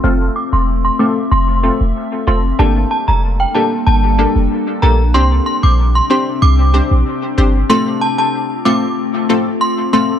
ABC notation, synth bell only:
X:1
M:4/4
L:1/16
Q:1/4=94
K:F
V:1 name="Synth bell"
f' z d' c' z c' d' z c'3 z3 c' z | a z a b z g a z a3 z3 b z | c' z c' d' z c' c' z d'3 z4 z | c' z a a2 z d'2 z4 c' z c' z |]